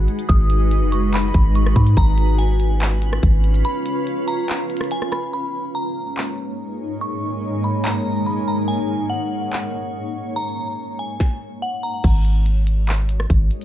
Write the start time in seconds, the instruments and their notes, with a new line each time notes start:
Already playing: ambient pad G#3 D#4 F#4 B4, synth bell B5
0.08 closed hi-hat
0.19 closed hi-hat
0.29 808-style bass G#1, synth bell D#6, kick, closed hi-hat
0.50 closed hi-hat
0.71 closed hi-hat
0.82 808-style bass F#1
0.92 synth bell C#6, closed hi-hat
1.13 synth bell B5, clap, closed hi-hat
1.34 808-style bass G#1, kick, closed hi-hat
1.55 synth bell C#6, closed hi-hat
1.66 cross-stick
1.76 808-style bass G#2, synth bell B5, kick, closed hi-hat
1.87 closed hi-hat
1.97 808-style bass G#1, ambient pad C#4 F4, synth bell A#5, kick, closed hi-hat
2.18 closed hi-hat
2.38 synth bell G#5, closed hi-hat
2.60 closed hi-hat
2.81 clap, closed hi-hat
3.02 closed hi-hat
3.13 cross-stick
3.23 808-style bass G#1, kick, closed hi-hat
3.44 closed hi-hat
3.54 closed hi-hat
3.65 synth bell B5, closed hi-hat
3.86 closed hi-hat
4.07 closed hi-hat
4.28 synth bell A#5, closed hi-hat
4.48 clap, closed hi-hat
4.70 closed hi-hat
4.77 cross-stick, closed hi-hat
4.84 closed hi-hat
4.91 synth bell G#5, closed hi-hat
5.02 cross-stick
5.12 synth bell B5, cross-stick, closed hi-hat
5.32 ambient pad G#2 G#3 A#3 D#4 C#5, synth bell B5
5.75 synth bell A#5
6.17 clap
7.01 synth bell C#6
7.64 synth bell B5
7.84 synth bell A#5, clap
8.26 synth bell B5
8.48 synth bell A#5
8.68 ambient pad C#5, synth bell G#5
9.10 synth bell F#5
9.53 clap
10.36 synth bell A#5
10.99 synth bell G#5
11.20 kick, snare
11.62 synth bell F#5
11.83 synth bell A#5
12.04 808-style bass G#1, ambient pad G#3 F#4 A#4 C#5 D#5, kick, closed hi-hat, crash
12.25 closed hi-hat
12.46 closed hi-hat
12.67 closed hi-hat
12.88 clap, closed hi-hat
13.09 closed hi-hat
13.20 cross-stick
13.30 808-style bass G#1, kick, closed hi-hat
13.51 closed hi-hat
13.61 closed hi-hat